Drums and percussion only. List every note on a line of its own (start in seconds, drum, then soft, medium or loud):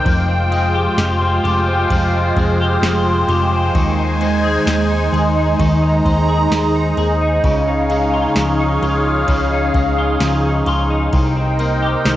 0.06 kick loud
0.06 ride medium
0.52 ride soft
0.98 snare loud
0.98 ride medium
0.98 tambourine medium
1.45 ride soft
1.90 kick loud
1.90 ride medium
2.36 kick medium
2.36 ride soft
2.83 snare loud
2.83 ride medium
2.83 tambourine medium
3.29 ride soft
3.75 kick loud
3.75 ride medium
4.21 ride medium
4.67 snare loud
4.67 ride medium
4.67 tambourine medium
5.14 ride soft
5.59 kick loud
5.59 ride medium
6.05 kick medium
6.05 ride soft
6.52 snare loud
6.52 ride medium
6.52 tambourine medium
6.97 ride soft
7.44 kick loud
7.44 ride medium
7.90 ride medium
8.36 snare loud
8.36 ride medium
8.36 tambourine medium
8.83 ride soft
9.28 kick loud
9.28 ride medium
9.74 kick medium
9.74 ride soft
10.20 snare loud
10.20 ride medium
10.20 tambourine medium
10.66 ride soft
11.13 kick loud
11.13 ride medium
11.59 ride medium
12.05 snare loud
12.05 ride medium
12.05 tambourine medium